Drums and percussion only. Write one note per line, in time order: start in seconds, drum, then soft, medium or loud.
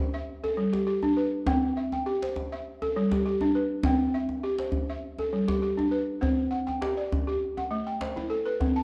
0.13 djembe slap soft
0.44 djembe tone soft
0.57 djembe slap soft
0.73 djembe slap soft
1.02 djembe slap soft
1.02 djembe tone soft
1.46 djembe slap medium
1.46 djembe tone medium
1.46 djembe bass medium
1.92 djembe tone soft
2.07 djembe slap soft
2.22 djembe slap soft
2.36 djembe tone medium
2.52 djembe slap soft
2.82 djembe tone medium
2.96 djembe slap soft
3.11 djembe slap soft
3.11 djembe bass soft
3.41 djembe slap soft
3.41 djembe tone medium
3.83 djembe slap medium
3.83 djembe tone medium
3.83 djembe bass medium
4.00 djembe slap soft
4.29 djembe tone medium
4.59 djembe slap soft
4.72 djembe bass medium
4.89 djembe slap soft
5.19 djembe tone medium
5.33 djembe slap soft
5.48 djembe slap medium
5.48 djembe bass medium
5.62 djembe slap soft
5.79 djembe tone medium
6.23 djembe tone medium
6.23 djembe bass medium
6.68 djembe tone soft
6.82 djembe slap medium
7.12 djembe tone medium
7.12 djembe bass medium
7.58 djembe tone soft
8.01 djembe slap medium
8.17 djembe tone soft
8.61 djembe tone medium
8.61 djembe bass medium